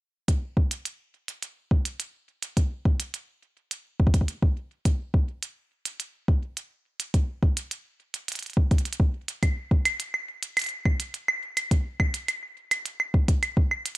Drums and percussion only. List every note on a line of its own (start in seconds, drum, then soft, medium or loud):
0.28 kick medium
0.28 closed hi-hat medium
0.57 kick loud
0.71 closed hi-hat medium
0.85 closed hi-hat medium
1.28 closed hi-hat medium
1.43 closed hi-hat medium
1.71 kick loud
1.85 closed hi-hat medium
2.00 closed hi-hat medium
2.43 closed hi-hat medium
2.57 kick loud
2.57 closed hi-hat medium
2.85 kick loud
3.00 closed hi-hat medium
3.14 closed hi-hat medium
3.71 closed hi-hat medium
4.00 kick loud
4.07 kick medium
4.14 kick loud
4.14 closed hi-hat medium
4.21 kick medium
4.28 closed hi-hat medium
4.42 kick loud
4.85 kick loud
4.85 closed hi-hat medium
5.14 kick loud
5.43 closed hi-hat medium
5.85 closed hi-hat medium
6.00 closed hi-hat medium
6.28 kick loud
6.57 closed hi-hat medium
7.00 closed hi-hat medium
7.14 kick loud
7.14 closed hi-hat soft
7.43 kick loud
7.57 closed hi-hat medium
7.71 closed hi-hat medium
8.14 closed hi-hat medium
8.28 closed hi-hat soft
8.32 closed hi-hat soft
8.35 closed hi-hat soft
8.39 closed hi-hat soft
8.43 closed hi-hat soft
8.46 closed hi-hat soft
8.50 closed hi-hat soft
8.53 kick loud
8.53 closed hi-hat soft
8.71 kick loud
8.71 closed hi-hat soft
8.78 closed hi-hat soft
8.85 closed hi-hat soft
8.93 closed hi-hat soft
9.00 kick loud
9.28 closed hi-hat medium
9.43 kick loud
9.43 closed hi-hat soft
9.43 claves soft
9.71 kick loud
9.85 closed hi-hat medium
9.85 claves medium
10.00 closed hi-hat soft
10.14 claves soft
10.43 closed hi-hat medium
10.57 closed hi-hat soft
10.57 claves medium
10.59 closed hi-hat soft
10.62 closed hi-hat soft
10.64 closed hi-hat soft
10.66 closed hi-hat soft
10.69 closed hi-hat soft
10.85 kick loud
10.85 claves soft
11.00 closed hi-hat medium
11.14 closed hi-hat soft
11.28 claves medium
11.57 closed hi-hat medium
11.57 claves medium
11.71 kick loud
11.71 closed hi-hat soft
12.00 kick loud
12.00 claves medium
12.14 closed hi-hat medium
12.28 closed hi-hat medium
12.28 claves medium
12.71 closed hi-hat medium
12.71 claves medium
12.86 closed hi-hat medium
13.00 claves medium
13.14 kick loud
13.28 kick loud
13.28 closed hi-hat medium
13.43 closed hi-hat soft
13.43 claves medium
13.57 kick loud
13.71 claves medium
13.86 closed hi-hat medium